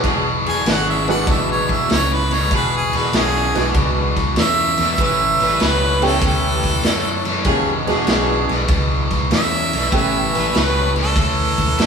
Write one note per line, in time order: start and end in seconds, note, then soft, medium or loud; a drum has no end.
0.03 0.42 E1 medium
0.03 0.61 E2 medium
0.03 0.62 B2 medium
0.03 0.29 D4 medium
0.03 0.29 F#4 medium
0.03 0.29 G#4 medium
0.03 kick loud
0.03 snare soft
0.03 ride medium
0.45 0.64 E1 medium
0.45 1.15 D4 medium
0.45 1.16 F#4 medium
0.45 1.16 G#4 medium
0.45 0.67 G#5 medium
0.45 snare soft
0.45 ride medium
0.65 1.23 G#1 medium
0.65 1.04 E2 medium
0.65 1.04 C#3 medium
0.65 snare loud
0.65 ride medium
0.70 0.88 F#5 medium
0.90 1.08 E5 medium
1.07 1.25 E2 medium
1.07 1.26 B2 medium
1.07 1.86 E3 medium
1.07 1.86 G#3 medium
1.07 1.86 B3 medium
1.07 1.86 D4 medium
1.07 1.86 F#4 medium
1.07 1.29 F#5 medium
1.07 snare soft
1.07 ride medium
1.27 1.66 A1 medium
1.27 1.86 E2 medium
1.27 1.85 B2 medium
1.27 1.49 E5 medium
1.27 kick loud
1.27 snare soft
1.27 ride medium
1.52 1.73 C#5 medium
1.69 1.88 A1 medium
1.69 1.90 E5 medium
1.69 kick medium
1.69 snare soft
1.69 ride medium
1.88 2.47 C#2 medium
1.88 2.27 E2 medium
1.88 2.27 C#3 medium
1.88 2.15 C#5 medium
1.88 snare loud
1.88 ride medium
2.13 2.35 B4 medium
2.31 2.49 E2 medium
2.31 2.49 B2 medium
2.31 2.52 C#5 medium
2.31 snare soft
2.31 ride medium
2.51 2.90 E1 loud
2.51 3.09 E2 medium
2.51 3.09 B2 medium
2.51 2.76 D4 medium
2.51 2.77 F#4 medium
2.51 2.77 G#4 medium
2.51 kick loud
2.51 snare soft
2.51 ride medium
2.55 2.73 B4 medium
2.77 2.98 G#4 loud
2.93 3.12 E1 medium
2.93 3.63 D4 medium
2.93 3.64 F#4 medium
2.93 3.64 G#4 medium
2.93 3.14 B4 medium
2.93 snare soft
2.93 ride medium
3.13 3.52 B1 medium
3.13 3.51 E2 medium
3.13 3.51 C#3 medium
3.13 3.75 G#4 loud
3.13 snare loud
3.13 ride medium
3.54 3.73 B1 medium
3.54 3.73 E2 medium
3.54 3.73 B2 medium
3.54 4.32 E3 medium
3.54 4.33 G#3 medium
3.54 4.33 B3 medium
3.54 4.33 D4 medium
3.54 4.33 F#4 medium
3.54 snare soft
3.54 ride medium
3.74 4.13 C#2 medium
3.74 4.33 E2 medium
3.74 4.33 B2 medium
3.74 kick loud
3.74 snare soft
3.74 ride loud
4.16 4.35 C#2 medium
4.16 kick medium
4.16 snare soft
4.16 ride medium
4.36 4.75 E2 medium
4.36 4.75 C#3 medium
4.36 snare loud
4.36 ride medium
4.41 4.99 E5 loud
4.78 4.97 E2 medium
4.78 4.96 E2 medium
4.78 4.97 B2 medium
4.78 snare soft
4.78 ride medium
4.98 5.37 A1 loud
4.98 5.56 A2 medium
4.98 5.57 E3 medium
4.98 5.24 C#4 medium
4.98 5.24 G4 medium
4.98 5.25 B4 medium
4.98 kick loud
4.98 snare soft
4.98 ride medium
5.03 5.65 E5 loud
5.40 5.58 A1 medium
5.40 6.10 C#4 medium
5.40 6.10 G4 medium
5.40 6.11 B4 medium
5.40 snare soft
5.40 ride medium
5.60 6.18 C#2 medium
5.60 5.98 A2 medium
5.60 5.98 F#3 medium
5.60 6.03 B4 loud
5.60 snare loud
5.60 ride medium
6.01 6.20 A2 medium
6.01 6.79 E3 medium
6.01 6.20 E3 medium
6.01 6.80 A3 medium
6.01 6.80 B3 medium
6.01 6.80 C#4 medium
6.01 6.80 G4 medium
6.01 6.23 A4 medium
6.01 snare soft
6.01 ride medium
6.21 6.60 D2 medium
6.21 6.80 A2 medium
6.21 6.80 E3 loud
6.21 kick loud
6.21 snare soft
6.21 ride medium
6.27 7.45 A4 medium
6.64 6.82 D2 medium
6.64 kick medium
6.64 snare soft
6.64 ride medium
6.83 7.46 F#2 medium
6.83 7.21 A2 medium
6.83 7.22 F#3 loud
6.83 snare loud
6.83 ride medium
7.25 7.44 A2 medium
7.25 7.44 E3 medium
7.25 snare soft
7.25 ride medium
7.44 7.84 E1 loud
7.44 8.04 E2 medium
7.44 8.04 B2 medium
7.44 7.83 D#3 medium
7.44 7.83 G3 medium
7.44 7.84 A#3 medium
7.44 7.84 C#4 medium
7.44 7.71 D4 medium
7.44 7.84 F4 medium
7.44 7.71 F#4 medium
7.44 7.71 G#4 loud
7.44 kick loud
7.44 snare soft
7.44 ride medium
7.87 8.06 E1 medium
7.87 9.19 E3 medium
7.87 9.19 G#3 medium
7.87 9.19 B3 medium
7.87 8.57 D4 medium
7.87 9.19 D4 medium
7.87 8.57 F#4 medium
7.87 9.20 F#4 medium
7.87 8.58 G#4 loud
7.87 snare soft
7.87 ride medium
8.07 8.46 B1 medium
8.07 8.45 E2 medium
8.07 8.45 C#3 medium
8.07 snare loud
8.07 ride medium
8.49 8.68 B1 medium
8.49 8.67 E2 medium
8.49 8.68 B2 medium
8.49 snare soft
8.49 ride medium
8.68 9.08 C#2 medium
8.68 9.27 E2 medium
8.68 9.27 B2 medium
8.68 kick loud
8.68 snare soft
8.68 ride medium
9.10 9.29 C#2 medium
9.10 kick medium
9.10 snare soft
9.10 ride medium
9.31 9.69 E2 medium
9.31 9.70 E2 medium
9.31 9.69 C#3 medium
9.31 9.92 E5 loud
9.31 snare loud
9.31 ride medium
9.73 9.92 B1 medium
9.73 9.91 E2 medium
9.73 9.91 B2 medium
9.73 snare soft
9.73 ride medium
9.92 10.31 A1 medium
9.92 10.51 A2 medium
9.92 10.30 E3 medium
9.92 10.51 E3 medium
9.92 10.30 A3 medium
9.92 10.31 B3 medium
9.92 10.18 C#4 medium
9.92 10.31 C#4 medium
9.92 10.18 G4 medium
9.92 10.31 G4 medium
9.92 10.18 B4 medium
9.92 kick loud
9.92 snare soft
9.92 ride medium
9.96 10.58 E5 medium
10.34 10.54 A1 medium
10.34 11.04 C#4 medium
10.34 11.04 G4 medium
10.34 11.05 B4 medium
10.34 snare soft
10.34 ride medium
10.54 11.13 C#2 medium
10.54 10.92 A2 medium
10.54 10.92 F#3 medium
10.54 10.96 B4 medium
10.54 snare loud
10.54 ride medium
10.95 11.14 A2 medium
10.95 11.14 E3 medium
10.95 snare soft
10.95 ride medium
11.01 11.18 A4 loud
11.16 11.55 D2 medium
11.16 11.74 A2 medium
11.16 11.74 E3 medium
11.16 kick loud
11.16 snare soft
11.16 ride loud
11.21 11.86 A4 loud
11.58 11.76 D2 medium
11.58 kick medium
11.58 snare soft
11.58 ride medium
11.78 11.86 F#2 loud
11.78 11.86 A2 medium
11.78 11.86 F#3 medium
11.78 snare loud
11.78 ride medium